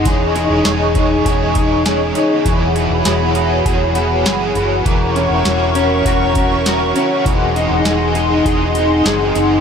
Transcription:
Already playing: clean electric guitar D#4 G#4, analog synth pad G#4 D#5
0.05 fingered electric bass E1, overdriven electric guitar E3 G#3 C#4 D#4 G#4, analog synth pad C#5 C#6, kick, closed hi-hat
0.35 overdriven electric guitar C#4 D#4 G#4, closed hi-hat
0.50 fingered electric bass E1
0.65 fingered electric bass E1, overdriven electric guitar G#3 C#4 D#4 G#4, snare, closed hi-hat
0.95 overdriven electric guitar C#4 D#4 G#4, kick, closed hi-hat
1.25 fingered electric bass E1, overdriven electric guitar E3 G#3 C#4 D#4 G#4, kick, closed hi-hat
1.55 overdriven electric guitar C#4 D#4 G#4, kick, closed hi-hat
1.85 overdriven electric guitar G#3 C#4 D#4 G#4, snare, closed hi-hat
2.15 overdriven electric guitar C#4 D#4 G#4, closed hi-hat
2.45 fingered electric bass E1, overdriven electric guitar E3 F#3 B3 E4 G#4, analog synth pad F#5 B5, kick, closed hi-hat
2.75 overdriven electric guitar B3 E4 G#4, clean electric guitar F#4, closed hi-hat
2.90 fingered electric bass E1
3.05 fingered electric bass E1, overdriven electric guitar F#3 B3 E4 G#4, snare, closed hi-hat
3.35 overdriven electric guitar B3 E4 G#4, clean electric guitar F#4, closed hi-hat
3.65 fingered electric bass E1, overdriven electric guitar E3 F#3 B3 E4 G#4, kick, closed hi-hat
3.95 overdriven electric guitar B3 E4 G#4, clean electric guitar F#4, closed hi-hat
4.25 fingered electric bass F#1, overdriven electric guitar F#3 B3 E4 G#4, snare, closed hi-hat
4.55 fingered electric bass F#1, overdriven electric guitar B3 E4 G#4, clean electric guitar F#4, closed hi-hat
4.85 fingered electric bass E1, overdriven electric guitar E3 F#3 C#4 E4 A#4, analog synth pad A#4 C#5 C#6, kick, closed hi-hat
5.15 overdriven electric guitar C#4 E4 A#4, closed hi-hat
5.30 fingered electric bass E1
5.45 fingered electric bass E1, overdriven electric guitar F#3 C#4 E4 A#4, clean electric guitar F#4, snare, closed hi-hat
5.75 overdriven electric guitar C#4 E4 A#4, closed hi-hat
6.05 fingered electric bass E1, overdriven electric guitar E3 F#3 C#4 E4 A#4, clean electric guitar F#4, kick, closed hi-hat
6.35 overdriven electric guitar C#4 E4 A#4, kick, closed hi-hat
6.64 overdriven electric guitar F#3 C#4 E4 A#4, clean electric guitar F#4, snare, closed hi-hat
6.94 overdriven electric guitar C#4 E4 A#4, closed hi-hat
7.25 fingered electric bass E1, overdriven electric guitar E3 F#3 C4 D#4 G#4, analog synth pad G#4 D#5 C6, kick, closed hi-hat
7.55 overdriven electric guitar C4 D#4 G#4, closed hi-hat
7.70 fingered electric bass E1
7.85 fingered electric bass E1, overdriven electric guitar F#3 C4 D#4 G#4, snare, closed hi-hat
8.15 overdriven electric guitar C4 D#4 G#4, closed hi-hat
8.45 fingered electric bass E1, overdriven electric guitar E3 F#3 C4 D#4 G#4, kick, closed hi-hat
8.75 overdriven electric guitar C4 D#4 G#4, closed hi-hat
9.05 fingered electric bass F#1, overdriven electric guitar F#3 C4 D#4 G#4, snare, closed hi-hat
9.35 fingered electric bass F#1, overdriven electric guitar C4 D#4 G#4, closed hi-hat

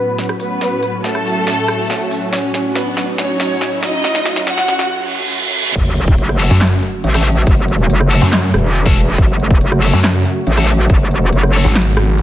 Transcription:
Already playing: supersaw synth A2 F#3 C#4 F#4, violin section B3 B4, riser
0.18 snare
0.29 cross-stick
0.40 violin section B3 B4, open hi-hat
0.61 snare
0.83 closed hi-hat
1.04 violin section A3 A4, snare
1.15 cross-stick
1.26 open hi-hat
1.47 snare
1.68 cross-stick, closed hi-hat
1.90 snare
2.11 open hi-hat
2.33 violin section C#4 C#5, snare
2.54 snare, closed hi-hat
2.75 violin section B3 B4, snare
2.97 snare, open hi-hat
3.18 violin section C#4 C#5, snare
3.40 snare, closed hi-hat
3.61 snare
3.83 violin section D#4 D#5, snare, open hi-hat
4.04 snare
4.15 snare
4.25 snare, closed hi-hat
4.36 snare, closed hi-hat
4.47 violin section F#4 F#5, snare
4.58 snare
4.68 snare, open hi-hat
4.79 snare
4.90 reverse cymbal
5.75 wobble bass F#1, supersaw synth C#3 F#3 A3 F#4, kick, closed hi-hat, crash, sub drop
5.97 closed hi-hat
6.08 kick
6.18 wobble bass F#1, closed hi-hat
6.29 cross-stick
6.40 distorted electric guitar C#4 F#4 A4, open hi-hat
6.51 detuned saw bass F#2
6.61 snare, clap, closed hi-hat
6.83 closed hi-hat
7.04 wobble bass A1, closed hi-hat
7.15 distorted electric guitar C#4 F#4 A4, cross-stick
7.25 open hi-hat
7.47 wobble bass F#1, kick, closed hi-hat
7.68 closed hi-hat
7.90 wobble bass F#1, closed hi-hat
8.01 cross-stick
8.11 distorted electric guitar C#4 F#4 A4, open hi-hat
8.22 detuned saw bass F#2
8.33 snare, clap, closed hi-hat
8.54 wobble bass E1, cross-stick, closed hi-hat
8.75 closed hi-hat
8.86 distorted electric guitar C#4 F#4 A4, kick
8.97 open hi-hat
9.18 wobble bass F#1, kick, closed hi-hat
9.40 closed hi-hat
9.51 kick
9.61 wobble bass F#1, closed hi-hat
9.72 cross-stick
9.82 distorted electric guitar C#4 F#4 A4, open hi-hat
9.93 detuned saw bass F#2
10.04 snare, clap, closed hi-hat
10.25 closed hi-hat
10.47 wobble bass A1, closed hi-hat
10.58 distorted electric guitar C#4 F#4 A4, cross-stick
10.68 open hi-hat
10.90 wobble bass F#1, kick, closed hi-hat
11.11 closed hi-hat
11.33 wobble bass F#1, closed hi-hat
11.43 cross-stick
11.54 distorted electric guitar C#4 F#4 A4, open hi-hat
11.65 detuned saw bass G#1
11.75 snare, clap, closed hi-hat
11.97 cross-stick, closed hi-hat
12.18 closed hi-hat

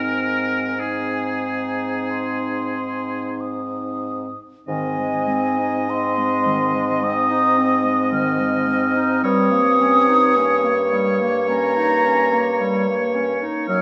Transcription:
Already playing: bassoon G#2, french horn C4, clarinet D#4, oboe A#4, flute G#5
0.78 french horn C4, clarinet D#4, oboe G#4, flute G#5
2.10 flute C6
3.41 flute D#6
4.68 bassoon G#2, clarinet D#3, french horn C4, oboe D#5, flute G#5
4.98 clarinet G#3
5.28 clarinet C4
5.59 clarinet D#4
5.88 clarinet C4, flute C6
6.18 clarinet G#3
6.46 clarinet D#3
6.75 clarinet G#3
7.03 clarinet C4, flute D#6
7.30 clarinet D#4
7.58 clarinet C4
7.85 clarinet G#3
8.12 clarinet D#3, flute F6
8.40 clarinet G#3
8.68 clarinet C4
8.96 clarinet D#4
9.23 bassoon G2, clarinet G3, oboe C#5, flute D#6
9.51 clarinet A#3
9.79 clarinet C#4
10.08 clarinet D#4
10.36 french horn A#3, clarinet C#4
10.64 clarinet A#3
10.92 clarinet G3
11.20 clarinet A#3
11.49 clarinet C#4, flute A#5
11.77 clarinet D#4
12.06 clarinet C#4
12.33 clarinet A#3
12.61 clarinet G3
12.88 clarinet A#3
13.15 clarinet C#4
13.42 clarinet D#4
13.68 bassoon F#2, clarinet F#3, flute F6

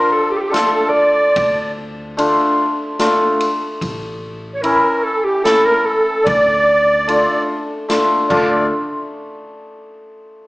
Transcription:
Already playing: hammered dulcimer F3 D4 F4, accordion A#4
0.11 clarinet A4, accordion A4
0.31 clarinet G4, accordion G4
0.37 clarinet G4 A4
0.44 accordion G4
0.50 hammered dulcimer A3 D4 F4, clarinet A4, accordion A4, snare, ride
0.89 clarinet D5
0.94 accordion D5
1.36 upright bass D2, kick, ride
2.17 hammered dulcimer A3 D4 F4, ride
2.99 hammered dulcimer A3 D4 F4, snare, ride
3.40 ride
3.81 upright bass A1, kick, ride
4.54 accordion C#5, clarinet C#5
4.61 hammered dulcimer E3 C#4 E4, clarinet A#4, accordion A#4, ride
5.03 clarinet A4, accordion A4
5.24 clarinet G4, accordion G4
5.44 hammered dulcimer A3 C#4 E4, accordion A4, clarinet A4, snare, ride
5.64 accordion A#4, clarinet A#4
5.85 accordion A4, clarinet A4
6.24 upright bass D2, accordion D5, clarinet D5, kick, ride
7.07 hammered dulcimer A3 D4 F4, ride
7.89 hammered dulcimer A3 D4 F4, snare, ride
8.29 upright bass D2, hammered dulcimer A3 D4 F4, accordion D5, clarinet D5, kick, crash

